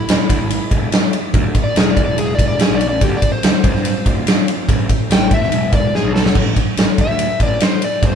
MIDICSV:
0, 0, Header, 1, 5, 480
1, 0, Start_track
1, 0, Key_signature, 0, "minor"
1, 0, Tempo, 418118
1, 1541, Time_signature, 4, 2, 24, 8
1, 9356, End_track
2, 0, Start_track
2, 0, Title_t, "Electric slide guitar"
2, 0, Program_c, 0, 29
2, 0, Note_on_c, 0, 64, 89
2, 809, Note_off_c, 0, 64, 0
2, 1879, Note_on_c, 0, 74, 93
2, 2026, Note_off_c, 0, 74, 0
2, 2039, Note_on_c, 0, 68, 83
2, 2186, Note_off_c, 0, 68, 0
2, 2191, Note_on_c, 0, 74, 95
2, 2338, Note_off_c, 0, 74, 0
2, 2352, Note_on_c, 0, 74, 79
2, 2502, Note_off_c, 0, 74, 0
2, 2511, Note_on_c, 0, 68, 97
2, 2662, Note_off_c, 0, 68, 0
2, 2695, Note_on_c, 0, 74, 90
2, 2830, Note_off_c, 0, 74, 0
2, 2844, Note_on_c, 0, 74, 97
2, 2989, Note_off_c, 0, 74, 0
2, 3009, Note_on_c, 0, 68, 94
2, 3151, Note_off_c, 0, 68, 0
2, 3156, Note_on_c, 0, 74, 94
2, 3305, Note_off_c, 0, 74, 0
2, 3322, Note_on_c, 0, 74, 88
2, 3468, Note_off_c, 0, 74, 0
2, 3484, Note_on_c, 0, 67, 99
2, 3629, Note_off_c, 0, 67, 0
2, 3635, Note_on_c, 0, 74, 96
2, 3785, Note_off_c, 0, 74, 0
2, 3810, Note_on_c, 0, 72, 95
2, 4728, Note_off_c, 0, 72, 0
2, 5883, Note_on_c, 0, 79, 99
2, 6106, Note_off_c, 0, 79, 0
2, 6129, Note_on_c, 0, 76, 99
2, 6581, Note_off_c, 0, 76, 0
2, 6595, Note_on_c, 0, 74, 95
2, 6821, Note_off_c, 0, 74, 0
2, 6833, Note_on_c, 0, 68, 101
2, 7060, Note_off_c, 0, 68, 0
2, 7064, Note_on_c, 0, 69, 96
2, 7295, Note_off_c, 0, 69, 0
2, 8047, Note_on_c, 0, 76, 105
2, 8500, Note_off_c, 0, 76, 0
2, 8527, Note_on_c, 0, 74, 93
2, 8747, Note_off_c, 0, 74, 0
2, 8762, Note_on_c, 0, 72, 92
2, 8984, Note_off_c, 0, 72, 0
2, 9005, Note_on_c, 0, 74, 77
2, 9225, Note_off_c, 0, 74, 0
2, 9257, Note_on_c, 0, 72, 87
2, 9356, Note_off_c, 0, 72, 0
2, 9356, End_track
3, 0, Start_track
3, 0, Title_t, "Tonewheel organ"
3, 0, Program_c, 1, 16
3, 0, Note_on_c, 1, 56, 68
3, 0, Note_on_c, 1, 64, 66
3, 0, Note_on_c, 1, 74, 69
3, 1512, Note_off_c, 1, 56, 0
3, 1512, Note_off_c, 1, 64, 0
3, 1513, Note_off_c, 1, 74, 0
3, 1543, Note_on_c, 1, 65, 66
3, 1546, Note_on_c, 1, 69, 64
3, 1551, Note_on_c, 1, 75, 64
3, 1697, Note_on_c, 1, 74, 71
3, 1699, Note_on_c, 1, 64, 64
3, 1700, Note_on_c, 1, 68, 71
3, 1702, Note_off_c, 1, 65, 0
3, 1704, Note_off_c, 1, 69, 0
3, 1706, Note_off_c, 1, 75, 0
3, 3430, Note_off_c, 1, 74, 0
3, 3443, Note_on_c, 1, 74, 68
3, 3444, Note_off_c, 1, 64, 0
3, 3444, Note_on_c, 1, 65, 65
3, 3445, Note_off_c, 1, 68, 0
3, 3449, Note_on_c, 1, 60, 67
3, 5353, Note_off_c, 1, 74, 0
3, 5354, Note_off_c, 1, 65, 0
3, 5356, Note_off_c, 1, 60, 0
3, 5367, Note_on_c, 1, 57, 68
3, 5367, Note_on_c, 1, 67, 64
3, 5371, Note_on_c, 1, 72, 62
3, 6324, Note_off_c, 1, 67, 0
3, 6325, Note_off_c, 1, 57, 0
3, 6327, Note_off_c, 1, 72, 0
3, 6344, Note_on_c, 1, 64, 72
3, 6344, Note_on_c, 1, 74, 66
3, 6348, Note_on_c, 1, 56, 71
3, 7292, Note_off_c, 1, 74, 0
3, 7293, Note_off_c, 1, 64, 0
3, 7295, Note_off_c, 1, 56, 0
3, 7303, Note_on_c, 1, 57, 61
3, 7305, Note_on_c, 1, 72, 62
3, 7310, Note_on_c, 1, 67, 58
3, 9356, Note_off_c, 1, 57, 0
3, 9356, Note_off_c, 1, 67, 0
3, 9356, Note_off_c, 1, 72, 0
3, 9356, End_track
4, 0, Start_track
4, 0, Title_t, "Picked electric bass"
4, 0, Program_c, 2, 34
4, 105, Note_on_c, 2, 28, 88
4, 199, Note_off_c, 2, 28, 0
4, 341, Note_on_c, 2, 38, 85
4, 437, Note_off_c, 2, 38, 0
4, 469, Note_on_c, 2, 32, 78
4, 658, Note_off_c, 2, 32, 0
4, 816, Note_on_c, 2, 28, 80
4, 1010, Note_off_c, 2, 28, 0
4, 1538, Note_on_c, 2, 38, 100
4, 1732, Note_off_c, 2, 38, 0
4, 2029, Note_on_c, 2, 28, 94
4, 2219, Note_off_c, 2, 28, 0
4, 2257, Note_on_c, 2, 40, 90
4, 2355, Note_off_c, 2, 40, 0
4, 2385, Note_on_c, 2, 28, 92
4, 2962, Note_off_c, 2, 28, 0
4, 3104, Note_on_c, 2, 35, 77
4, 3349, Note_off_c, 2, 35, 0
4, 3349, Note_on_c, 2, 33, 91
4, 3443, Note_off_c, 2, 33, 0
4, 3461, Note_on_c, 2, 38, 97
4, 3654, Note_off_c, 2, 38, 0
4, 3948, Note_on_c, 2, 38, 98
4, 4042, Note_off_c, 2, 38, 0
4, 4177, Note_on_c, 2, 36, 89
4, 4275, Note_off_c, 2, 36, 0
4, 4300, Note_on_c, 2, 43, 93
4, 4494, Note_off_c, 2, 43, 0
4, 4664, Note_on_c, 2, 38, 80
4, 4856, Note_off_c, 2, 38, 0
4, 5381, Note_on_c, 2, 33, 92
4, 5574, Note_off_c, 2, 33, 0
4, 5861, Note_on_c, 2, 33, 98
4, 6054, Note_off_c, 2, 33, 0
4, 6097, Note_on_c, 2, 45, 85
4, 6195, Note_off_c, 2, 45, 0
4, 6217, Note_on_c, 2, 29, 90
4, 6315, Note_off_c, 2, 29, 0
4, 6338, Note_on_c, 2, 28, 110
4, 6821, Note_off_c, 2, 28, 0
4, 6930, Note_on_c, 2, 35, 80
4, 7179, Note_on_c, 2, 28, 78
4, 7197, Note_off_c, 2, 35, 0
4, 7276, Note_off_c, 2, 28, 0
4, 7294, Note_on_c, 2, 33, 94
4, 7489, Note_off_c, 2, 33, 0
4, 7783, Note_on_c, 2, 33, 83
4, 7878, Note_off_c, 2, 33, 0
4, 8014, Note_on_c, 2, 31, 75
4, 8113, Note_off_c, 2, 31, 0
4, 8149, Note_on_c, 2, 38, 85
4, 8338, Note_off_c, 2, 38, 0
4, 8491, Note_on_c, 2, 33, 83
4, 8687, Note_off_c, 2, 33, 0
4, 9211, Note_on_c, 2, 31, 89
4, 9356, Note_off_c, 2, 31, 0
4, 9356, End_track
5, 0, Start_track
5, 0, Title_t, "Drums"
5, 97, Note_on_c, 9, 51, 96
5, 114, Note_on_c, 9, 38, 110
5, 212, Note_off_c, 9, 51, 0
5, 229, Note_off_c, 9, 38, 0
5, 339, Note_on_c, 9, 36, 82
5, 342, Note_on_c, 9, 51, 84
5, 454, Note_off_c, 9, 36, 0
5, 456, Note_off_c, 9, 51, 0
5, 578, Note_on_c, 9, 51, 92
5, 693, Note_off_c, 9, 51, 0
5, 818, Note_on_c, 9, 36, 85
5, 818, Note_on_c, 9, 51, 66
5, 933, Note_off_c, 9, 36, 0
5, 933, Note_off_c, 9, 51, 0
5, 1057, Note_on_c, 9, 51, 86
5, 1075, Note_on_c, 9, 38, 106
5, 1172, Note_off_c, 9, 51, 0
5, 1189, Note_off_c, 9, 38, 0
5, 1296, Note_on_c, 9, 51, 73
5, 1411, Note_off_c, 9, 51, 0
5, 1535, Note_on_c, 9, 51, 74
5, 1537, Note_on_c, 9, 36, 100
5, 1650, Note_off_c, 9, 51, 0
5, 1652, Note_off_c, 9, 36, 0
5, 1776, Note_on_c, 9, 51, 67
5, 1777, Note_on_c, 9, 36, 87
5, 1890, Note_off_c, 9, 51, 0
5, 1892, Note_off_c, 9, 36, 0
5, 2019, Note_on_c, 9, 51, 81
5, 2037, Note_on_c, 9, 38, 111
5, 2134, Note_off_c, 9, 51, 0
5, 2151, Note_off_c, 9, 38, 0
5, 2258, Note_on_c, 9, 36, 87
5, 2260, Note_on_c, 9, 51, 69
5, 2373, Note_off_c, 9, 36, 0
5, 2374, Note_off_c, 9, 51, 0
5, 2499, Note_on_c, 9, 51, 78
5, 2614, Note_off_c, 9, 51, 0
5, 2739, Note_on_c, 9, 36, 90
5, 2743, Note_on_c, 9, 51, 76
5, 2854, Note_off_c, 9, 36, 0
5, 2858, Note_off_c, 9, 51, 0
5, 2977, Note_on_c, 9, 51, 79
5, 2994, Note_on_c, 9, 38, 102
5, 3092, Note_off_c, 9, 51, 0
5, 3109, Note_off_c, 9, 38, 0
5, 3220, Note_on_c, 9, 51, 76
5, 3335, Note_off_c, 9, 51, 0
5, 3456, Note_on_c, 9, 51, 77
5, 3459, Note_on_c, 9, 36, 82
5, 3571, Note_off_c, 9, 51, 0
5, 3574, Note_off_c, 9, 36, 0
5, 3696, Note_on_c, 9, 51, 72
5, 3698, Note_on_c, 9, 36, 83
5, 3811, Note_off_c, 9, 51, 0
5, 3813, Note_off_c, 9, 36, 0
5, 3938, Note_on_c, 9, 51, 94
5, 3955, Note_on_c, 9, 38, 115
5, 4052, Note_off_c, 9, 51, 0
5, 4070, Note_off_c, 9, 38, 0
5, 4177, Note_on_c, 9, 51, 74
5, 4178, Note_on_c, 9, 36, 91
5, 4292, Note_off_c, 9, 51, 0
5, 4293, Note_off_c, 9, 36, 0
5, 4311, Note_on_c, 9, 38, 31
5, 4417, Note_on_c, 9, 51, 90
5, 4426, Note_off_c, 9, 38, 0
5, 4531, Note_off_c, 9, 51, 0
5, 4660, Note_on_c, 9, 36, 87
5, 4660, Note_on_c, 9, 51, 74
5, 4774, Note_off_c, 9, 36, 0
5, 4775, Note_off_c, 9, 51, 0
5, 4899, Note_on_c, 9, 51, 97
5, 4916, Note_on_c, 9, 38, 110
5, 5014, Note_off_c, 9, 51, 0
5, 5031, Note_off_c, 9, 38, 0
5, 5142, Note_on_c, 9, 51, 84
5, 5257, Note_off_c, 9, 51, 0
5, 5380, Note_on_c, 9, 36, 94
5, 5381, Note_on_c, 9, 51, 85
5, 5494, Note_off_c, 9, 36, 0
5, 5496, Note_off_c, 9, 51, 0
5, 5617, Note_on_c, 9, 51, 73
5, 5619, Note_on_c, 9, 36, 84
5, 5732, Note_off_c, 9, 51, 0
5, 5733, Note_off_c, 9, 36, 0
5, 5860, Note_on_c, 9, 51, 83
5, 5878, Note_on_c, 9, 38, 111
5, 5975, Note_off_c, 9, 51, 0
5, 5992, Note_off_c, 9, 38, 0
5, 6095, Note_on_c, 9, 51, 67
5, 6096, Note_on_c, 9, 36, 90
5, 6210, Note_off_c, 9, 51, 0
5, 6211, Note_off_c, 9, 36, 0
5, 6236, Note_on_c, 9, 38, 28
5, 6334, Note_on_c, 9, 51, 87
5, 6351, Note_off_c, 9, 38, 0
5, 6449, Note_off_c, 9, 51, 0
5, 6571, Note_on_c, 9, 51, 67
5, 6575, Note_on_c, 9, 36, 94
5, 6686, Note_off_c, 9, 51, 0
5, 6689, Note_off_c, 9, 36, 0
5, 6830, Note_on_c, 9, 38, 61
5, 6944, Note_off_c, 9, 38, 0
5, 7070, Note_on_c, 9, 38, 92
5, 7185, Note_off_c, 9, 38, 0
5, 7186, Note_on_c, 9, 38, 99
5, 7292, Note_on_c, 9, 49, 95
5, 7294, Note_on_c, 9, 36, 91
5, 7301, Note_off_c, 9, 38, 0
5, 7407, Note_off_c, 9, 49, 0
5, 7409, Note_off_c, 9, 36, 0
5, 7534, Note_on_c, 9, 51, 66
5, 7535, Note_on_c, 9, 36, 84
5, 7649, Note_off_c, 9, 51, 0
5, 7650, Note_off_c, 9, 36, 0
5, 7775, Note_on_c, 9, 51, 93
5, 7792, Note_on_c, 9, 38, 110
5, 7889, Note_off_c, 9, 51, 0
5, 7907, Note_off_c, 9, 38, 0
5, 8015, Note_on_c, 9, 51, 74
5, 8016, Note_on_c, 9, 36, 86
5, 8129, Note_off_c, 9, 51, 0
5, 8131, Note_off_c, 9, 36, 0
5, 8155, Note_on_c, 9, 38, 27
5, 8250, Note_on_c, 9, 51, 92
5, 8269, Note_off_c, 9, 38, 0
5, 8365, Note_off_c, 9, 51, 0
5, 8494, Note_on_c, 9, 51, 70
5, 8495, Note_on_c, 9, 36, 83
5, 8609, Note_off_c, 9, 51, 0
5, 8610, Note_off_c, 9, 36, 0
5, 8728, Note_on_c, 9, 51, 91
5, 8745, Note_on_c, 9, 38, 101
5, 8843, Note_off_c, 9, 51, 0
5, 8860, Note_off_c, 9, 38, 0
5, 8974, Note_on_c, 9, 51, 80
5, 9089, Note_off_c, 9, 51, 0
5, 9212, Note_on_c, 9, 51, 77
5, 9214, Note_on_c, 9, 36, 88
5, 9327, Note_off_c, 9, 51, 0
5, 9329, Note_off_c, 9, 36, 0
5, 9356, End_track
0, 0, End_of_file